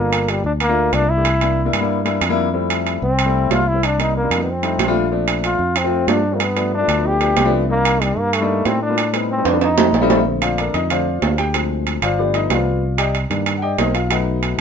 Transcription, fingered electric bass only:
Already playing: G1
0.44 D2
0.93 C2
1.73 G2
2.21 F2
3.02 C2
3.50 C2
4.30 F2
4.78 A#1
5.59 F2
6.07 G2
6.88 D2
7.37 C2
8.17 G2
8.66 A2
9.45 F2
9.93 A#1
10.74 F2
11.22 D2
12.02 G1
12.50 C2
13.30 G2
13.78 B1

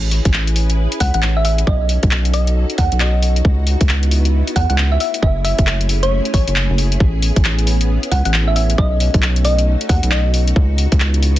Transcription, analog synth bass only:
Already playing: A1
0.25 A1
1.01 C#2
1.14 A1
1.67 B1
2.03 B1
2.78 D#2
2.92 B1
3.45 C#2
3.81 C#2
4.56 E2
4.70 C#2
5.23 F#1
5.59 F#1
6.34 A1
6.48 F#1
6.70 F#1
7.00 A1
7.36 A1
8.12 C#2
8.25 A1
8.78 B1
9.14 B1
9.89 D#2
10.03 B1
10.56 C#2
10.92 C#2

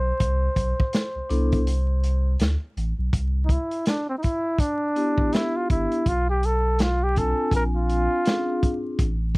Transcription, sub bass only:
Already playing: B1
0.21 C2
0.56 B1
1.15 C2
1.30 C2
2.40 D2
2.77 A1
2.98 B1
3.13 C2
5.18 A1
5.70 G1
6.06 B1
7.52 A#1
8.99 A1

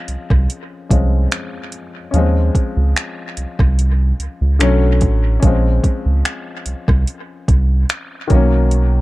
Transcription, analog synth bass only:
0.08 C2
0.30 C2
0.90 C2
2.13 D#2
2.77 C#2
3.37 C2
3.59 C2
4.19 C#2
4.41 C#2
4.60 B1
5.02 A1
5.43 A#1
6.06 C#2
6.66 C2
6.88 C2
7.48 C2
8.30 B1

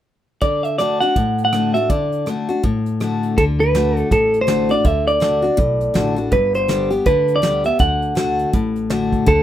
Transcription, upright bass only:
3.38 D2
4.11 A1
4.85 D2
5.58 B1
5.95 A1
6.32 G1
7.06 D2
7.80 D2
8.54 A1
9.27 D2

